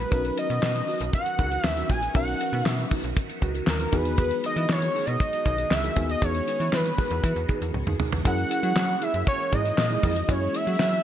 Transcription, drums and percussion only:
0.12 kick, closed hi-hat
0.25 closed hi-hat
0.38 closed hi-hat
0.50 closed hi-hat
0.63 snare, clap
0.76 closed hi-hat
0.88 open hi-hat
1.00 closed hi-hat
1.13 kick, closed hi-hat
1.26 closed hi-hat
1.39 kick, closed hi-hat
1.52 closed hi-hat
1.64 snare, clap
1.77 closed hi-hat
1.89 kick, closed hi-hat
2.03 closed hi-hat
2.15 kick, closed hi-hat
2.28 closed hi-hat
2.41 closed hi-hat
2.53 closed hi-hat
2.66 snare, clap
2.79 closed hi-hat
2.91 kick, open hi-hat
3.04 closed hi-hat
3.17 kick, closed hi-hat
3.29 closed hi-hat
3.42 kick, closed hi-hat
3.55 closed hi-hat
3.67 snare, clap
3.80 closed hi-hat
3.92 kick, closed hi-hat
4.05 closed hi-hat
4.18 kick, closed hi-hat
4.31 closed hi-hat
4.44 closed hi-hat
4.57 closed hi-hat
4.69 snare, clap
4.82 closed hi-hat
4.95 open hi-hat
5.07 closed hi-hat
5.20 kick, closed hi-hat
5.33 closed hi-hat
5.46 kick, closed hi-hat
5.58 closed hi-hat
5.71 snare, clap
5.84 closed hi-hat
5.96 kick, closed hi-hat
6.09 closed hi-hat
6.22 kick, closed hi-hat
6.35 closed hi-hat
6.48 closed hi-hat
6.60 closed hi-hat
6.73 snare, clap
6.86 closed hi-hat
6.98 kick, open hi-hat
7.11 closed hi-hat
7.24 kick, closed hi-hat
7.36 closed hi-hat
7.49 kick, closed hi-hat
7.62 closed hi-hat
7.74 high tom
7.87 mid tom
8.00 mid tom
8.12 floor tom
8.25 kick, closed hi-hat
8.38 closed hi-hat
8.51 closed hi-hat
8.64 closed hi-hat
8.76 snare, clap
8.89 closed hi-hat
9.02 closed hi-hat
9.14 closed hi-hat
9.27 kick, closed hi-hat
9.40 closed hi-hat
9.52 kick, closed hi-hat
9.65 closed hi-hat
9.78 snare, clap
9.91 closed hi-hat
10.03 kick, open hi-hat
10.16 closed hi-hat
10.29 kick, closed hi-hat
10.54 closed hi-hat
10.67 closed hi-hat
10.79 snare, clap

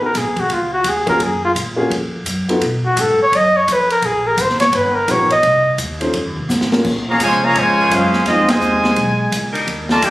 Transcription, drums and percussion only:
0.14 kick, snare, hi-hat pedal, ride
0.36 kick, ride
0.49 kick, ride
0.84 kick, hi-hat pedal, ride
1.07 kick, ride
1.20 kick, ride
1.55 kick, hi-hat pedal, ride
1.91 kick, ride
2.26 kick, hi-hat pedal, ride
2.49 ride
2.61 kick, ride
2.97 kick, hi-hat pedal, ride
3.32 kick, ride
3.68 kick, hi-hat pedal, ride
3.90 ride
4.02 kick, ride
4.38 kick, hi-hat pedal, ride
4.49 snare
4.60 snare, ride
4.73 kick, ride
5.08 kick, hi-hat pedal, ride
5.30 ride
5.43 kick, ride
5.78 kick, hi-hat pedal, ride
6.01 ride
6.13 kick, ride
6.50 snare, hi-hat pedal
6.61 snare
6.72 snare
6.85 kick, crash
7.20 kick, hi-hat pedal, ride
7.55 kick, ride
7.91 kick, hi-hat pedal, ride
8.13 snare
8.26 kick, snare, ride
8.48 snare, ride
8.61 hi-hat pedal
8.84 snare
8.96 kick, ride
9.32 kick, hi-hat pedal, ride
9.55 ride
9.67 kick, ride
9.89 snare
10.02 kick, hi-hat pedal, ride

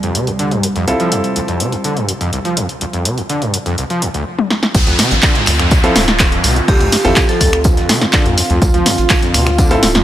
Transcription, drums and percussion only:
0.03 closed hi-hat
0.15 closed hi-hat
0.27 closed hi-hat
0.39 closed hi-hat
0.51 closed hi-hat
0.63 closed hi-hat
0.76 closed hi-hat
0.88 closed hi-hat
1.00 closed hi-hat
1.12 closed hi-hat
1.24 closed hi-hat
1.36 closed hi-hat
1.48 closed hi-hat
1.60 closed hi-hat
1.72 closed hi-hat
1.84 closed hi-hat
1.97 closed hi-hat
2.08 closed hi-hat
2.21 closed hi-hat
2.33 closed hi-hat
2.45 closed hi-hat
2.57 closed hi-hat
2.69 closed hi-hat
2.81 closed hi-hat
2.93 closed hi-hat
3.05 closed hi-hat
3.18 closed hi-hat
3.29 closed hi-hat
3.42 closed hi-hat
3.54 closed hi-hat
3.66 closed hi-hat
3.78 closed hi-hat
3.90 closed hi-hat
4.02 closed hi-hat
4.14 closed hi-hat
4.39 high tom
4.50 snare
4.63 snare
4.74 kick, closed hi-hat, tambourine
4.87 closed hi-hat
4.99 snare, open hi-hat, tambourine
5.11 closed hi-hat
5.22 kick, snare, clap, closed hi-hat, tambourine
5.35 closed hi-hat
5.46 finger snap, snare, open hi-hat, tambourine
5.59 finger snap, snare, closed hi-hat
5.71 kick, closed hi-hat, tambourine
5.83 snare, closed hi-hat
5.95 snare, open hi-hat, tambourine
6.08 snare, closed hi-hat
6.19 kick, snare, clap, closed hi-hat, tambourine
6.32 closed hi-hat
6.44 open hi-hat, tambourine
6.56 closed hi-hat
6.68 kick, closed hi-hat, open hi-hat
6.80 closed hi-hat
6.92 snare, open hi-hat, tambourine
7.05 snare, closed hi-hat
7.16 kick, snare, clap, closed hi-hat, tambourine
7.29 snare, closed hi-hat
7.41 kick, open hi-hat, tambourine
7.53 finger snap, closed hi-hat
7.64 kick, closed hi-hat, tambourine
7.77 snare, closed hi-hat
7.89 snare, open hi-hat, tambourine
8.01 snare, closed hi-hat
8.13 kick, snare, clap, closed hi-hat, tambourine
8.26 closed hi-hat
8.38 open hi-hat, tambourine
8.50 closed hi-hat
8.62 kick, closed hi-hat, tambourine
8.74 closed hi-hat
8.86 snare, open hi-hat, tambourine
8.98 closed hi-hat
9.10 kick, snare, clap, closed hi-hat, tambourine
9.22 closed hi-hat
9.34 finger snap, snare, open hi-hat, tambourine
9.46 finger snap, snare, closed hi-hat
9.58 kick, closed hi-hat, tambourine
9.70 snare, closed hi-hat
9.83 snare, open hi-hat, tambourine
9.95 snare, closed hi-hat

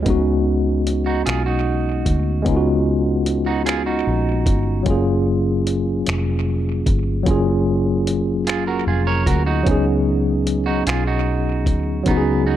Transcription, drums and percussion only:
0.06 kick, closed hi-hat
0.87 closed hi-hat
1.27 finger snap, closed hi-hat
2.06 kick, closed hi-hat
2.46 kick, closed hi-hat
3.26 closed hi-hat
3.66 finger snap, closed hi-hat
4.46 kick, closed hi-hat
4.86 kick, closed hi-hat
5.67 closed hi-hat
6.07 finger snap, closed hi-hat
6.86 kick, closed hi-hat
7.26 kick, closed hi-hat
8.07 closed hi-hat
8.47 finger snap, closed hi-hat
9.26 kick, closed hi-hat
9.66 kick, closed hi-hat
10.47 closed hi-hat
10.87 finger snap, closed hi-hat
11.66 kick, closed hi-hat
12.06 kick, closed hi-hat

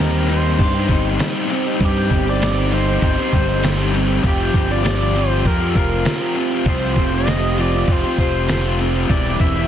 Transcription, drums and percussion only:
0.29 crash
0.59 kick, crash
0.89 kick, crash
1.19 snare, tambourine, crash
1.50 crash
1.80 kick, crash
2.11 kick, crash
2.42 snare, tambourine, crash
2.72 crash
3.02 kick, crash
3.33 kick, crash
3.63 snare, tambourine, crash
3.94 crash
4.24 kick, crash
4.54 kick, crash
4.84 snare, tambourine, crash
5.16 crash
5.45 kick, crash
5.75 kick, crash
6.05 snare, tambourine, crash
6.35 crash
6.66 kick, crash
6.96 kick, crash
7.27 snare, tambourine, crash
7.58 crash
7.88 kick, crash
8.18 kick, crash
8.48 snare, tambourine, crash
8.79 crash
9.09 kick, crash
9.40 kick, crash

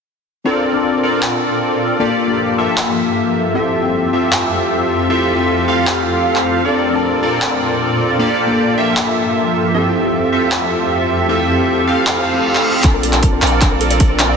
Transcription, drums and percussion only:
1.23 clap
2.77 clap
4.32 clap
5.87 clap
6.36 clap
7.42 clap
8.97 clap
10.52 clap
12.07 clap
12.55 clap
12.84 kick, clap, closed hi-hat
13.03 closed hi-hat
13.13 clap, closed hi-hat
13.23 kick, closed hi-hat
13.42 clap, closed hi-hat
13.47 closed hi-hat
13.61 kick, clap, closed hi-hat
13.81 closed hi-hat
13.91 closed hi-hat
14.00 kick, closed hi-hat
14.19 clap, closed hi-hat

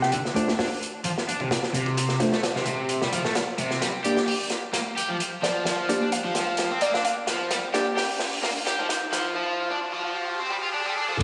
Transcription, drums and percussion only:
0.03 snare
0.12 kick, closed hi-hat
0.25 snare
0.36 closed hi-hat
0.48 snare
0.59 snare, open hi-hat
0.83 closed hi-hat
1.04 closed hi-hat
1.18 snare
1.29 closed hi-hat
1.40 kick
1.51 snare, closed hi-hat
1.63 snare
1.74 closed hi-hat
1.86 kick
1.97 kick, closed hi-hat
2.09 snare
2.20 snare, closed hi-hat
2.32 snare
2.43 snare, closed hi-hat
2.56 snare
2.66 kick, closed hi-hat
2.89 closed hi-hat
3.02 snare
3.13 kick, closed hi-hat
3.25 snare
3.35 snare, closed hi-hat
3.58 closed hi-hat
3.71 snare
3.82 snare, closed hi-hat
4.05 closed hi-hat
4.17 snare
4.28 open hi-hat
4.50 snare, closed hi-hat
4.73 snare, closed hi-hat
4.98 closed hi-hat
5.20 closed hi-hat
5.44 snare, closed hi-hat
5.65 snare, closed hi-hat
5.89 closed hi-hat
6.12 closed hi-hat
6.35 snare, closed hi-hat
6.57 snare, closed hi-hat
6.81 closed hi-hat
6.94 snare
7.05 closed hi-hat
7.27 snare, closed hi-hat
7.51 snare, closed hi-hat
7.74 snare, closed hi-hat
7.97 snare, open hi-hat
8.19 snare, open hi-hat
8.33 open hi-hat
8.43 snare, open hi-hat
8.67 snare, closed hi-hat
8.89 snare, closed hi-hat
9.13 snare, closed hi-hat

